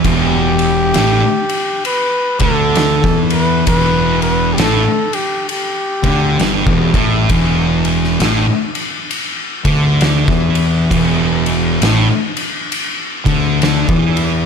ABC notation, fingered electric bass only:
X:1
M:4/4
L:1/16
Q:"Swing" 1/4=66
K:Em
V:1 name="Fingered electric bass" clef=bass
E,,,4 A,,, z4 z D,,3 E,,3 | E,,,4 A,,, z4 z D,,2 G,,, E,,, A,,,2 | E,,,4 A,,, z4 z D,,3 E,,3 | E,,,4 A,,, z4 z D,,3 E,,3 |]